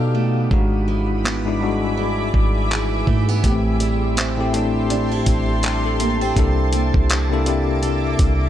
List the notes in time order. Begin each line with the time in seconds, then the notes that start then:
Already playing: B2 B3 D#4 A4 D5 B5
0.15 A3
0.51 G#1 G#2 G#3 D4 F#4 G#4 E5 D6, kick
0.88 E3
1.24 B3, clap
1.45 G#2 G#3 D4 E4
1.60 G#2 G3 D4 F#4
1.68 G#3
1.97 D4
2.34 G#1, kick
2.71 E3, clap
3.07 G#2 A3, kick
3.28 B3
3.43 A1 A2 A3 B3 G4 A5 C6, kick, closed hi-hat
3.52 C4
3.80 G3, closed hi-hat
4.17 C4, clap, closed hi-hat
4.38 A2 A3 C4 G4
4.53 A2 A3 C4 D4, closed hi-hat
4.90 D4, closed hi-hat
5.11 E4
5.26 A1, kick, closed hi-hat
5.63 G3 D4 G4, clap, closed hi-hat
5.86 E4 A4
6.00 A#3, closed hi-hat
6.21 C4 G4 C5
6.36 C2 C3 A#3 D4 E4 A4 E5 D6, kick, closed hi-hat
6.73 A#3, closed hi-hat
6.94 C2, kick
7.10 E4, clap, closed hi-hat
7.30 C3 A#3 D4 E4 A4
7.46 C3 A#3 D4 E4 G4, closed hi-hat
7.83 A4, closed hi-hat
8.19 C2, kick, closed hi-hat